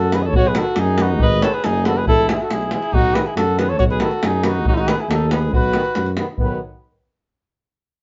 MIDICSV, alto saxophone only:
0, 0, Header, 1, 2, 480
1, 0, Start_track
1, 0, Tempo, 431965
1, 378, Time_signature, 2, 2, 24, 8
1, 8920, End_track
2, 0, Start_track
2, 0, Title_t, "Alto saxophone"
2, 0, Program_c, 0, 65
2, 0, Note_on_c, 0, 66, 85
2, 173, Note_on_c, 0, 68, 81
2, 189, Note_off_c, 0, 66, 0
2, 250, Note_on_c, 0, 71, 59
2, 266, Note_off_c, 0, 68, 0
2, 278, Note_on_c, 0, 69, 75
2, 295, Note_off_c, 0, 71, 0
2, 387, Note_off_c, 0, 69, 0
2, 396, Note_on_c, 0, 66, 113
2, 520, Note_on_c, 0, 68, 91
2, 537, Note_off_c, 0, 66, 0
2, 648, Note_on_c, 0, 66, 99
2, 665, Note_off_c, 0, 68, 0
2, 872, Note_on_c, 0, 63, 85
2, 889, Note_off_c, 0, 66, 0
2, 1109, Note_off_c, 0, 63, 0
2, 1109, Note_on_c, 0, 63, 104
2, 1362, Note_on_c, 0, 71, 127
2, 1379, Note_off_c, 0, 63, 0
2, 1603, Note_on_c, 0, 69, 88
2, 1619, Note_off_c, 0, 71, 0
2, 1710, Note_on_c, 0, 68, 84
2, 1727, Note_off_c, 0, 69, 0
2, 1829, Note_on_c, 0, 63, 94
2, 1845, Note_off_c, 0, 68, 0
2, 2062, Note_off_c, 0, 63, 0
2, 2071, Note_on_c, 0, 66, 89
2, 2201, Note_on_c, 0, 68, 72
2, 2218, Note_off_c, 0, 66, 0
2, 2297, Note_off_c, 0, 68, 0
2, 2304, Note_on_c, 0, 64, 114
2, 2523, Note_off_c, 0, 64, 0
2, 2562, Note_on_c, 0, 64, 85
2, 2691, Note_on_c, 0, 66, 73
2, 2708, Note_off_c, 0, 64, 0
2, 2783, Note_on_c, 0, 64, 78
2, 2799, Note_off_c, 0, 66, 0
2, 3019, Note_off_c, 0, 64, 0
2, 3027, Note_on_c, 0, 64, 97
2, 3250, Note_on_c, 0, 63, 117
2, 3267, Note_off_c, 0, 64, 0
2, 3511, Note_on_c, 0, 68, 76
2, 3528, Note_off_c, 0, 63, 0
2, 3612, Note_on_c, 0, 64, 77
2, 3629, Note_off_c, 0, 68, 0
2, 3724, Note_off_c, 0, 64, 0
2, 3731, Note_on_c, 0, 66, 79
2, 3985, Note_on_c, 0, 68, 80
2, 4002, Note_off_c, 0, 66, 0
2, 4113, Note_on_c, 0, 69, 74
2, 4130, Note_off_c, 0, 68, 0
2, 4211, Note_off_c, 0, 69, 0
2, 4218, Note_on_c, 0, 66, 93
2, 4272, Note_off_c, 0, 66, 0
2, 4346, Note_on_c, 0, 68, 98
2, 4471, Note_on_c, 0, 66, 86
2, 4488, Note_off_c, 0, 68, 0
2, 4703, Note_on_c, 0, 63, 85
2, 4720, Note_off_c, 0, 66, 0
2, 4957, Note_off_c, 0, 63, 0
2, 4957, Note_on_c, 0, 63, 88
2, 5186, Note_off_c, 0, 63, 0
2, 5197, Note_on_c, 0, 63, 103
2, 5228, Note_on_c, 0, 61, 84
2, 5244, Note_off_c, 0, 63, 0
2, 5296, Note_on_c, 0, 63, 109
2, 5313, Note_off_c, 0, 61, 0
2, 5426, Note_on_c, 0, 68, 87
2, 5443, Note_off_c, 0, 63, 0
2, 5559, Note_on_c, 0, 64, 75
2, 5575, Note_off_c, 0, 68, 0
2, 5656, Note_on_c, 0, 63, 84
2, 5673, Note_off_c, 0, 64, 0
2, 5864, Note_off_c, 0, 63, 0
2, 5870, Note_on_c, 0, 68, 79
2, 6106, Note_off_c, 0, 68, 0
2, 6151, Note_on_c, 0, 66, 94
2, 6819, Note_off_c, 0, 66, 0
2, 7119, Note_on_c, 0, 54, 83
2, 7332, Note_off_c, 0, 54, 0
2, 8920, End_track
0, 0, End_of_file